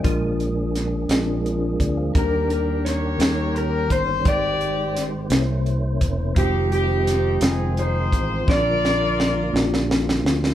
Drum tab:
HH |x-x-x-x-x-x-|x-x-x-x-x-x-|x-x-x-x-x-x-|x-x-x-x-x-x-|
SD |----o-o-----|----o-o-----|----o-o-----|----o-o-----|
BD |o---------o-|o---------o-|o---------o-|o---------o-|

HH |------------|
SD |o-o-o-oooooo|
BD |o-----------|